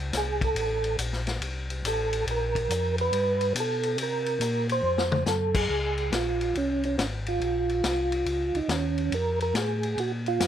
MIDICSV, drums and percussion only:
0, 0, Header, 1, 2, 480
1, 0, Start_track
1, 0, Key_signature, -5, "minor"
1, 0, Tempo, 427655
1, 633, Time_signature, 4, 2, 24, 8
1, 11753, End_track
2, 0, Start_track
2, 0, Title_t, "Drums"
2, 146, Note_on_c, 9, 38, 42
2, 147, Note_on_c, 9, 44, 66
2, 147, Note_on_c, 9, 51, 75
2, 258, Note_off_c, 9, 38, 0
2, 259, Note_off_c, 9, 44, 0
2, 259, Note_off_c, 9, 51, 0
2, 464, Note_on_c, 9, 36, 67
2, 467, Note_on_c, 9, 51, 54
2, 577, Note_off_c, 9, 36, 0
2, 580, Note_off_c, 9, 51, 0
2, 629, Note_on_c, 9, 51, 74
2, 741, Note_off_c, 9, 51, 0
2, 941, Note_on_c, 9, 51, 50
2, 1053, Note_off_c, 9, 51, 0
2, 1106, Note_on_c, 9, 44, 66
2, 1106, Note_on_c, 9, 51, 83
2, 1219, Note_off_c, 9, 44, 0
2, 1219, Note_off_c, 9, 51, 0
2, 1266, Note_on_c, 9, 38, 29
2, 1379, Note_off_c, 9, 38, 0
2, 1422, Note_on_c, 9, 51, 53
2, 1429, Note_on_c, 9, 38, 51
2, 1534, Note_off_c, 9, 51, 0
2, 1541, Note_off_c, 9, 38, 0
2, 1590, Note_on_c, 9, 51, 67
2, 1702, Note_off_c, 9, 51, 0
2, 1908, Note_on_c, 9, 51, 55
2, 2021, Note_off_c, 9, 51, 0
2, 2074, Note_on_c, 9, 44, 64
2, 2074, Note_on_c, 9, 51, 91
2, 2186, Note_off_c, 9, 44, 0
2, 2186, Note_off_c, 9, 51, 0
2, 2387, Note_on_c, 9, 51, 58
2, 2499, Note_off_c, 9, 51, 0
2, 2553, Note_on_c, 9, 51, 68
2, 2665, Note_off_c, 9, 51, 0
2, 2865, Note_on_c, 9, 36, 46
2, 2872, Note_on_c, 9, 51, 57
2, 2977, Note_off_c, 9, 36, 0
2, 2984, Note_off_c, 9, 51, 0
2, 3035, Note_on_c, 9, 44, 68
2, 3035, Note_on_c, 9, 51, 72
2, 3147, Note_off_c, 9, 44, 0
2, 3147, Note_off_c, 9, 51, 0
2, 3345, Note_on_c, 9, 51, 52
2, 3458, Note_off_c, 9, 51, 0
2, 3510, Note_on_c, 9, 51, 72
2, 3622, Note_off_c, 9, 51, 0
2, 3824, Note_on_c, 9, 51, 53
2, 3936, Note_off_c, 9, 51, 0
2, 3990, Note_on_c, 9, 44, 65
2, 3990, Note_on_c, 9, 51, 89
2, 4102, Note_off_c, 9, 44, 0
2, 4102, Note_off_c, 9, 51, 0
2, 4302, Note_on_c, 9, 51, 56
2, 4414, Note_off_c, 9, 51, 0
2, 4466, Note_on_c, 9, 51, 78
2, 4579, Note_off_c, 9, 51, 0
2, 4784, Note_on_c, 9, 51, 52
2, 4896, Note_off_c, 9, 51, 0
2, 4946, Note_on_c, 9, 44, 70
2, 4946, Note_on_c, 9, 51, 78
2, 5059, Note_off_c, 9, 44, 0
2, 5059, Note_off_c, 9, 51, 0
2, 5267, Note_on_c, 9, 51, 57
2, 5379, Note_off_c, 9, 51, 0
2, 5590, Note_on_c, 9, 38, 73
2, 5702, Note_off_c, 9, 38, 0
2, 5744, Note_on_c, 9, 47, 96
2, 5856, Note_off_c, 9, 47, 0
2, 5904, Note_on_c, 9, 38, 66
2, 5906, Note_on_c, 9, 44, 75
2, 6017, Note_off_c, 9, 38, 0
2, 6018, Note_off_c, 9, 44, 0
2, 6223, Note_on_c, 9, 49, 91
2, 6225, Note_on_c, 9, 36, 81
2, 6335, Note_off_c, 9, 49, 0
2, 6337, Note_off_c, 9, 36, 0
2, 6707, Note_on_c, 9, 51, 43
2, 6819, Note_off_c, 9, 51, 0
2, 6873, Note_on_c, 9, 38, 74
2, 6875, Note_on_c, 9, 44, 58
2, 6875, Note_on_c, 9, 51, 79
2, 6986, Note_off_c, 9, 38, 0
2, 6987, Note_off_c, 9, 44, 0
2, 6987, Note_off_c, 9, 51, 0
2, 7193, Note_on_c, 9, 51, 50
2, 7305, Note_off_c, 9, 51, 0
2, 7356, Note_on_c, 9, 51, 56
2, 7468, Note_off_c, 9, 51, 0
2, 7671, Note_on_c, 9, 51, 44
2, 7783, Note_off_c, 9, 51, 0
2, 7841, Note_on_c, 9, 38, 70
2, 7842, Note_on_c, 9, 44, 56
2, 7842, Note_on_c, 9, 51, 74
2, 7953, Note_off_c, 9, 38, 0
2, 7955, Note_off_c, 9, 44, 0
2, 7955, Note_off_c, 9, 51, 0
2, 8153, Note_on_c, 9, 51, 49
2, 8265, Note_off_c, 9, 51, 0
2, 8321, Note_on_c, 9, 51, 54
2, 8434, Note_off_c, 9, 51, 0
2, 8635, Note_on_c, 9, 51, 41
2, 8747, Note_off_c, 9, 51, 0
2, 8796, Note_on_c, 9, 38, 74
2, 8797, Note_on_c, 9, 44, 64
2, 8797, Note_on_c, 9, 51, 73
2, 8908, Note_off_c, 9, 38, 0
2, 8910, Note_off_c, 9, 44, 0
2, 8910, Note_off_c, 9, 51, 0
2, 9114, Note_on_c, 9, 51, 51
2, 9226, Note_off_c, 9, 51, 0
2, 9274, Note_on_c, 9, 51, 60
2, 9386, Note_off_c, 9, 51, 0
2, 9593, Note_on_c, 9, 51, 44
2, 9705, Note_off_c, 9, 51, 0
2, 9754, Note_on_c, 9, 38, 74
2, 9755, Note_on_c, 9, 44, 59
2, 9755, Note_on_c, 9, 51, 70
2, 9866, Note_off_c, 9, 38, 0
2, 9867, Note_off_c, 9, 44, 0
2, 9867, Note_off_c, 9, 51, 0
2, 10075, Note_on_c, 9, 51, 46
2, 10187, Note_off_c, 9, 51, 0
2, 10237, Note_on_c, 9, 51, 62
2, 10350, Note_off_c, 9, 51, 0
2, 10555, Note_on_c, 9, 51, 49
2, 10668, Note_off_c, 9, 51, 0
2, 10716, Note_on_c, 9, 38, 71
2, 10717, Note_on_c, 9, 44, 57
2, 10717, Note_on_c, 9, 51, 71
2, 10828, Note_off_c, 9, 38, 0
2, 10829, Note_off_c, 9, 44, 0
2, 10829, Note_off_c, 9, 51, 0
2, 11034, Note_on_c, 9, 51, 47
2, 11146, Note_off_c, 9, 51, 0
2, 11199, Note_on_c, 9, 51, 63
2, 11311, Note_off_c, 9, 51, 0
2, 11517, Note_on_c, 9, 51, 43
2, 11629, Note_off_c, 9, 51, 0
2, 11676, Note_on_c, 9, 38, 75
2, 11678, Note_on_c, 9, 44, 71
2, 11678, Note_on_c, 9, 51, 75
2, 11753, Note_off_c, 9, 38, 0
2, 11753, Note_off_c, 9, 44, 0
2, 11753, Note_off_c, 9, 51, 0
2, 11753, End_track
0, 0, End_of_file